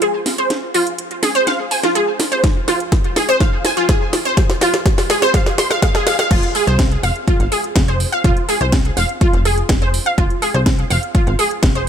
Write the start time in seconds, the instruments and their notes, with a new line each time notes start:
0.02 synth pluck G#4, closed hi-hat
0.26 snare, open hi-hat
0.38 synth pluck C5, closed hi-hat
0.50 snare, closed hi-hat
0.74 synth pluck F4, open hi-hat
0.87 closed hi-hat
0.99 closed hi-hat
1.11 closed hi-hat
1.23 synth pluck G#4, snare, open hi-hat
1.35 synth pluck C5, closed hi-hat
1.47 synth pluck F5, snare, closed hi-hat
1.71 synth pluck G#5, open hi-hat
1.83 synth pluck F4, snare, closed hi-hat
1.95 synth pluck G#4, closed hi-hat
2.20 snare, open hi-hat
2.32 synth pluck C5, closed hi-hat
2.44 kick, snare, closed hi-hat
2.68 synth pluck F4, snare, open hi-hat
2.80 closed hi-hat
2.92 kick, snare, closed hi-hat
3.04 closed hi-hat
3.16 synth pluck G#4, snare, open hi-hat
3.29 synth pluck C5, closed hi-hat
3.40 synth pluck F5, kick, snare, closed hi-hat
3.65 synth pluck G#5, snare, open hi-hat
3.77 synth pluck F4, closed hi-hat
3.89 synth pluck G#4, kick, snare, closed hi-hat
4.13 snare, open hi-hat
4.25 synth pluck C5, closed hi-hat
4.37 kick, snare, closed hi-hat
4.50 snare, closed hi-hat
4.61 synth pluck F4, snare, open hi-hat
4.74 snare, closed hi-hat
4.86 kick, snare, closed hi-hat
4.98 snare, open hi-hat
5.10 synth pluck G#4, snare, open hi-hat
5.22 synth pluck C5, snare, closed hi-hat
5.34 synth pluck F5, kick, snare, closed hi-hat
5.46 snare, closed hi-hat
5.58 synth pluck C6, snare, open hi-hat
5.70 synth pluck F5, snare, closed hi-hat
5.82 synth pluck F5, kick, snare, closed hi-hat
5.95 synth pluck G#4, snare
6.07 synth pluck F5, snare, open hi-hat
6.19 synth pluck F5, snare, closed hi-hat
6.31 analog synth bass F1, synth pluck F4, kick, closed hi-hat, crash
6.43 closed hi-hat
6.55 synth pluck G#4, open hi-hat
6.67 analog synth bass C2, synth pluck C5, closed hi-hat
6.79 kick, snare, closed hi-hat
6.92 closed hi-hat
7.03 analog synth bass F1, synth pluck F5, open hi-hat
7.16 closed hi-hat
7.28 synth pluck F4, kick, closed hi-hat
7.40 analog synth bass G#1, closed hi-hat
7.52 synth pluck G#4, open hi-hat
7.64 closed hi-hat
7.76 analog synth bass F1, kick, snare, closed hi-hat
7.88 synth pluck C5, closed hi-hat
8.00 open hi-hat
8.12 synth pluck F5, closed hi-hat
8.24 analog synth bass F1, synth pluck F4, kick, closed hi-hat
8.37 closed hi-hat
8.49 synth pluck G#4, open hi-hat
8.61 analog synth bass C2, synth pluck C5, closed hi-hat
8.72 kick, snare, closed hi-hat
8.85 closed hi-hat
8.97 analog synth bass F1, synth pluck F5, open hi-hat
9.09 closed hi-hat
9.21 synth pluck F4, kick, closed hi-hat
9.33 analog synth bass F1, closed hi-hat
9.45 synth pluck G#4, open hi-hat
9.58 closed hi-hat
9.69 analog synth bass F1, kick, snare, closed hi-hat
9.82 synth pluck C5, closed hi-hat
9.94 open hi-hat
10.06 synth pluck F5, closed hi-hat
10.18 analog synth bass F1, synth pluck F4, kick, closed hi-hat
10.30 closed hi-hat
10.42 synth pluck G#4, open hi-hat
10.54 analog synth bass C2, synth pluck C5, closed hi-hat
10.66 kick, snare, closed hi-hat
10.79 closed hi-hat
10.90 analog synth bass F1, synth pluck F5, open hi-hat
11.03 closed hi-hat
11.15 synth pluck F4, kick, closed hi-hat
11.27 analog synth bass G#1, closed hi-hat
11.39 synth pluck G#4, open hi-hat
11.51 closed hi-hat
11.63 analog synth bass F1, kick, snare, closed hi-hat
11.75 synth pluck C5, closed hi-hat